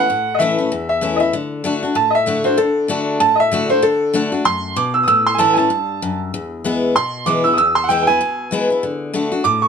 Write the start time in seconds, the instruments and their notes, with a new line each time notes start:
Already playing: upright piano F#5
0.10 steel-string acoustic guitar A2
0.35 upright piano D#5
0.39 steel-string acoustic guitar E3 A3 C#4 E4, upright piano E5
0.58 steel-string acoustic guitar C#4 E4
0.72 steel-string acoustic guitar E2
0.89 upright piano E5
1.01 steel-string acoustic guitar E3 A3 C#4 E4
1.16 steel-string acoustic guitar E4, upright piano D#5 E5
1.22 steel-string acoustic guitar C#4
1.33 steel-string acoustic guitar D3
1.64 steel-string acoustic guitar D3 A3 D4 F#4
1.83 steel-string acoustic guitar D4 F#4
1.95 steel-string acoustic guitar A2, upright piano A5
2.10 upright piano D#5
2.15 upright piano E5
2.26 steel-string acoustic guitar D3 A3 D4 F#4
2.44 steel-string acoustic guitar D4 F#4, upright piano C5
2.57 steel-string acoustic guitar D3, upright piano A4
2.88 steel-string acoustic guitar D3 A3 D4 F#4
3.20 steel-string acoustic guitar A2, upright piano A5
3.35 upright piano D#5
3.40 upright piano E5
3.51 steel-string acoustic guitar D3 A3 D4 F#4
3.69 steel-string acoustic guitar D4 F#4, upright piano C5
3.82 steel-string acoustic guitar D3, upright piano A4
4.14 steel-string acoustic guitar D3 A3 D4 F#4
4.32 steel-string acoustic guitar D4 F#4
4.45 steel-string acoustic guitar F#2, upright piano C6
4.76 steel-string acoustic guitar B2, upright piano D6
4.94 upright piano E6
5.03 upright piano D#6
5.08 steel-string acoustic guitar A2, upright piano E6
5.27 upright piano C6
5.34 steel-string acoustic guitar E3, upright piano G#5
5.39 steel-string acoustic guitar A3 C#4 E4, upright piano A5
5.53 steel-string acoustic guitar E4, upright piano G#5
5.58 steel-string acoustic guitar C#4, upright piano A5
5.70 steel-string acoustic guitar G2
6.02 steel-string acoustic guitar F#2
6.34 steel-string acoustic guitar E2
6.64 steel-string acoustic guitar E3 G#3 B3 E4
6.96 steel-string acoustic guitar B2, upright piano C6
7.26 steel-string acoustic guitar E3 G#3 B3 E4, upright piano D6
7.44 steel-string acoustic guitar B3 E4, upright piano E6
7.53 upright piano D#6
7.58 steel-string acoustic guitar E2, upright piano E6
7.75 upright piano C6
7.84 upright piano F#5
7.89 steel-string acoustic guitar E3 G#3 B3 E4, upright piano G5
8.03 upright piano G5
8.07 steel-string acoustic guitar B3 E4, upright piano G#5
8.21 steel-string acoustic guitar B2
8.51 steel-string acoustic guitar E3 G#3 B3 E4
8.70 steel-string acoustic guitar B3 E4
8.83 steel-string acoustic guitar D3
9.13 steel-string acoustic guitar D3 A3 D4 F#4
9.32 steel-string acoustic guitar D4 F#4
9.44 steel-string acoustic guitar A2, upright piano D6
9.62 upright piano C#6